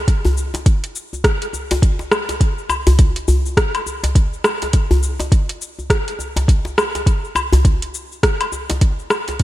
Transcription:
0.08 kick, closed hi-hat, cabasa
0.25 djembe slap, djembe bass, cabasa
0.37 cabasa
0.54 closed hi-hat, djembe slap, djembe tone, cabasa
0.66 kick, closed hi-hat, cabasa
0.84 closed hi-hat, cabasa
0.96 cabasa
1.13 djembe tone, cabasa
1.24 kick, cross-stick, closed hi-hat, cabasa
1.42 closed hi-hat, cabasa
1.53 djembe tone, cabasa
1.71 closed hi-hat, djembe slap, djembe tone, cabasa
1.82 kick, closed hi-hat, cabasa
1.99 djembe slap, cabasa
2.12 cross-stick, cabasa, low woodblock
2.29 closed hi-hat, djembe slap, cabasa
2.41 kick, closed hi-hat, cabasa
2.58 cabasa
2.69 djembe tone, cabasa, low woodblock
2.87 closed hi-hat, djembe slap, djembe bass, cabasa
2.99 kick, closed hi-hat, cabasa
3.16 closed hi-hat, cabasa
3.28 djembe bass, cabasa
3.46 cabasa
3.57 kick, cross-stick, closed hi-hat, cabasa
3.75 closed hi-hat, cabasa, low woodblock
3.86 djembe tone, cabasa
4.04 closed hi-hat, djembe slap, djembe tone, cabasa
4.15 kick, closed hi-hat, cabasa
4.33 cabasa
4.44 cross-stick, cabasa, low woodblock
4.62 closed hi-hat, djembe slap, cabasa
4.73 kick, closed hi-hat, cabasa
4.91 djembe slap, djembe bass, cabasa
5.03 cabasa
5.20 closed hi-hat, djembe slap, djembe tone, cabasa
5.32 kick, closed hi-hat, cabasa
5.49 closed hi-hat, cabasa
5.62 cabasa
5.79 djembe tone, cabasa
5.90 kick, cross-stick, closed hi-hat, cabasa
6.08 closed hi-hat, cabasa
6.19 djembe tone, cabasa
6.36 closed hi-hat, djembe slap, djembe tone, cabasa
6.48 kick, closed hi-hat, cabasa
6.65 djembe slap, cabasa
6.78 cross-stick, cabasa, low woodblock
6.95 closed hi-hat, djembe slap, cabasa
7.06 kick, closed hi-hat, cabasa
7.24 cabasa
7.35 djembe tone, cabasa, low woodblock
7.53 closed hi-hat, djembe slap, djembe bass, cabasa
7.65 kick, closed hi-hat, cabasa
7.82 closed hi-hat, cabasa
7.94 cabasa
8.12 cabasa
8.23 kick, cross-stick, closed hi-hat, cabasa
8.41 closed hi-hat, cabasa, low woodblock
8.52 djembe tone, cabasa
8.70 closed hi-hat, djembe slap, djembe tone, cabasa
8.81 kick, closed hi-hat, cabasa
8.99 cabasa
9.10 cross-stick, cabasa, low woodblock
9.28 closed hi-hat, djembe slap, cabasa
9.39 kick, closed hi-hat, cabasa

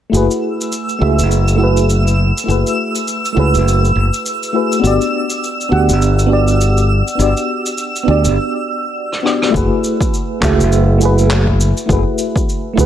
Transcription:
0.10 F#1 A3 E4 F#4 E6
0.14 G#4 B4, cabasa
0.31 cabasa
0.61 cabasa
0.72 cabasa
0.89 cabasa
0.99 C#2 A3 E4 F#4 G#4 E5
1.19 F#1, cabasa
1.31 cabasa
1.48 cabasa
1.56 A3 E4 F#4
1.61 G#4 B4
1.77 cabasa
1.90 cabasa
2.08 cabasa
2.38 cabasa
2.44 A3 E4 F#4
2.48 F#1 G#4 B4, cabasa
2.67 cabasa
2.95 cabasa
3.08 cabasa
3.25 cabasa
3.33 A3 E4 F#4
3.37 C#2 G#4 B4
3.54 F#1, cabasa
3.68 cabasa
3.85 cabasa
3.95 F#1
4.14 cabasa
4.26 cabasa
4.43 cabasa
4.53 A3 E4 F#4 G#4 B4
4.72 cabasa
4.80 G1 B3 D4 F#4
4.85 G4 D5, cabasa
5.01 cabasa
5.30 cabasa
5.44 cabasa
5.61 cabasa
5.69 D2 B3 D4 F#4 G4 F#5
5.89 G1, cabasa
6.02 cabasa
6.19 cabasa
6.26 B3 D4 F#4
6.31 G4 D5
6.48 cabasa
6.61 cabasa
6.77 cabasa
7.08 cabasa
7.15 G1 B3 D4 F#4
7.20 G4 D5, cabasa
7.37 cabasa
7.66 cabasa
7.78 cabasa
7.96 cabasa
8.03 B3 D4 F#4
8.08 D2 G4 D5
8.24 G1, cabasa
9.12 cross-stick
9.23 B3 D4 F#4 G4 D5, cross-stick
9.42 cross-stick
9.50 A3 E4 F#4, kick
9.54 F#1 G#4 B4, cabasa
9.84 cabasa
10.01 kick, cabasa
10.14 cabasa
10.41 C#2 A3 E4 F#4 G#4 E5, kick, clap, cabasa
10.59 F#1, cabasa
10.72 cabasa
10.98 A3 E4 F#4, cabasa
11.03 G#4 B4
11.18 cabasa
11.30 clap, cabasa
11.47 kick
11.61 cabasa
11.77 cabasa
11.86 F#1 A3 E4 F#4, kick
11.90 G#4 B4, cabasa
12.18 cabasa
12.36 kick, cabasa
12.49 cabasa
12.73 C#2 A3 E4 F#4
12.78 G#4 B4, kick, cabasa

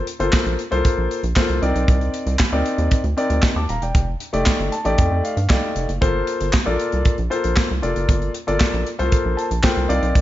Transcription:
0.07 closed hi-hat
0.19 G1 A#3 F4 A4 C5, closed hi-hat
0.32 kick, snare, clap
0.46 A#1, closed hi-hat
0.59 closed hi-hat
0.71 C2 A#3 F4 A4 C5, closed hi-hat
0.85 kick, closed hi-hat
0.98 A#1
1.11 closed hi-hat
1.23 A#1, closed hi-hat
1.36 A#3 F4 A4 C5, kick, snare, clap
1.49 C2, closed hi-hat
1.62 C2 C4 D#4 A#4 D5, closed hi-hat
1.75 B1, closed hi-hat
1.88 C2, kick, closed hi-hat
2.01 closed hi-hat
2.14 closed hi-hat
2.26 C2, closed hi-hat
2.39 kick, snare, clap
2.52 D2 C4 D#4 A#4 D5
2.66 closed hi-hat
2.78 D#2, closed hi-hat
2.91 kick, closed hi-hat
3.04 D2, closed hi-hat
3.17 C4 D#4 A#4 D5, closed hi-hat
3.30 D2, closed hi-hat
3.42 kick, snare, clap
3.56 D#2 A5 D6
3.69 D#1 F5 A#5, closed hi-hat
3.82 E1 D5 G5, closed hi-hat
3.95 F1, kick, closed hi-hat
4.20 closed hi-hat
4.33 F1 A3 D#4 G4 D5, closed hi-hat
4.46 kick, snare, clap
4.60 G1, closed hi-hat
4.72 A5, closed hi-hat
4.85 A1 A3 D#4 G4 D5, closed hi-hat
4.98 F2 G5, kick, closed hi-hat
5.11 F2
5.24 F5, closed hi-hat
5.37 G2, closed hi-hat
5.49 C2 A3 D#4 G4 D5 F5, kick, snare, clap
5.76 F1, closed hi-hat
5.89 F#1, closed hi-hat
6.01 G1 A#3 F4 A4 C5, kick, closed hi-hat
6.27 closed hi-hat
6.41 G1, closed hi-hat
6.53 kick, snare, clap
6.65 A#1 A#3 F4 A4 D5
6.79 closed hi-hat
6.92 C2, closed hi-hat
7.05 kick, closed hi-hat
7.18 A#1, closed hi-hat
7.30 A#3 F4 A4 C5, closed hi-hat
7.44 A#1, closed hi-hat
7.56 kick, snare, clap
7.71 C2
7.82 F1 A#3 F4 A4 D5, closed hi-hat
7.96 F#1, closed hi-hat
8.09 G1, kick, closed hi-hat
8.22 closed hi-hat
8.34 closed hi-hat
8.47 G1 A#3 F4 A4 D5, closed hi-hat
8.60 kick, snare, clap
8.74 A#1, closed hi-hat
8.87 closed hi-hat
8.99 C2 A3 F4 A4 C5, closed hi-hat
9.05 A#3
9.12 kick, closed hi-hat
9.25 A#1
9.37 A5, closed hi-hat
9.51 A#1, closed hi-hat
9.63 A#3 F4 A4 C5 G5, kick, snare, clap
9.76 C2, closed hi-hat
9.88 C2 C4 D#4 A#4 D5 F5, closed hi-hat
10.02 B1, closed hi-hat
10.15 C2, kick, closed hi-hat

